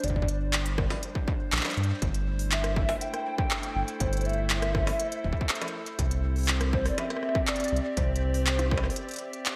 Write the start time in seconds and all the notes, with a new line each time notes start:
Already playing: G3 D4 C5
0.04 G1 D5, kick, closed hi-hat
0.10 kick
0.16 kick
0.22 kick
0.28 closed hi-hat
0.53 clap, closed hi-hat
0.66 closed hi-hat
0.78 kick, cross-stick
0.90 cross-stick, open hi-hat, struck metal
1.03 closed hi-hat
1.15 kick
1.28 kick
1.52 A#1, clap, closed hi-hat
1.57 clap
1.61 clap
1.65 clap, closed hi-hat, struck metal
1.69 clap, closed hi-hat
1.73 clap
1.77 G2, closed hi-hat
1.83 closed hi-hat
2.02 G1 A3, kick, closed hi-hat
2.12 E4, closed hi-hat
2.39 open hi-hat
2.47 A4
2.52 E5, clap, closed hi-hat
2.64 cross-stick, closed hi-hat
2.76 kick
2.89 cross-stick, open hi-hat, struck metal
3.01 G5, closed hi-hat
3.14 cross-stick, closed hi-hat
3.38 kick, cross-stick
3.51 clap
3.63 closed hi-hat
3.76 G1
3.88 closed hi-hat
4.00 G1 C5, kick, closed hi-hat
4.13 closed hi-hat
4.17 closed hi-hat
4.21 closed hi-hat
4.25 E5, closed hi-hat
4.29 closed hi-hat
4.33 closed hi-hat
4.50 clap, closed hi-hat
4.62 cross-stick, closed hi-hat
4.75 kick, cross-stick
4.87 cross-stick, open hi-hat, struck metal
5.00 closed hi-hat
5.12 closed hi-hat
5.24 D1, kick
5.33 kick
5.41 kick
5.49 clap, closed hi-hat
5.55 closed hi-hat
5.62 closed hi-hat, struck metal
5.68 closed hi-hat
5.86 closed hi-hat
5.99 C2 C4, kick, closed hi-hat
6.11 closed hi-hat
6.16 G4
6.36 open hi-hat
6.38 open hi-hat
6.41 open hi-hat
6.43 open hi-hat
6.46 clap, closed hi-hat, open hi-hat
6.61 cross-stick, closed hi-hat
6.65 D5
6.73 C5, kick
6.86 D5, cross-stick, open hi-hat
6.94 E5
6.98 E5, closed hi-hat, struck metal
7.10 cross-stick, closed hi-hat
7.17 cross-stick
7.23 cross-stick
7.29 cross-stick
7.35 kick, cross-stick
7.47 D5, clap, closed hi-hat
7.56 closed hi-hat
7.60 closed hi-hat
7.64 closed hi-hat
7.68 closed hi-hat
7.72 C2
7.76 closed hi-hat
7.97 C2 C5, kick, closed hi-hat
8.16 closed hi-hat
8.34 open hi-hat
8.47 clap, closed hi-hat
8.59 cross-stick, closed hi-hat
8.71 kick, cross-stick
8.78 struck metal
8.84 cross-stick
8.90 open hi-hat
8.96 closed hi-hat
9.09 closed hi-hat
9.11 closed hi-hat
9.14 closed hi-hat
9.16 closed hi-hat
9.19 closed hi-hat
9.33 closed hi-hat
9.46 clap, closed hi-hat